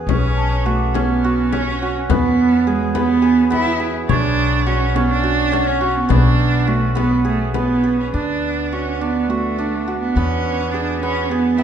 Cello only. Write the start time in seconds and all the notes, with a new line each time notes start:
0.08 C#4
0.66 A3
0.94 B3
1.52 C#4
2.10 B3
2.67 G#3
2.96 B3
3.52 E4
4.08 D4
4.67 C#4
4.95 B3
5.10 D4
5.67 C#4
5.96 B3
6.10 D4
6.67 A3
6.96 B3
7.27 A3
7.56 B3
8.00 C#4
8.13 D4
8.73 C#4
9.01 B3
9.29 A3
10.00 B3
10.15 C#4
10.72 D4
11.01 C#4
11.30 B3
11.57 E4